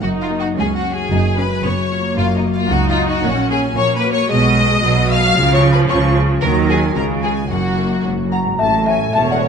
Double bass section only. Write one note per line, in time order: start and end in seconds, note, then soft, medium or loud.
0.03 0.45 F#1 medium
0.57 0.99 C#2 medium
1.10 1.53 F#1 medium
1.63 2.06 F#1 medium
2.17 2.59 F#1 medium
2.70 3.13 C#2 medium
3.24 3.66 A#1 medium
3.76 4.18 A#1 medium
4.30 4.77 B1 medium
4.83 5.30 B1 medium
5.36 5.83 C#2 medium
5.89 6.36 C#2 medium
6.42 6.89 D#2 medium
6.95 7.44 C#2 medium
7.49 7.98 F#1 medium
8.04 8.53 F#1 medium
8.59 9.04 A1 medium
9.14 9.48 E1 medium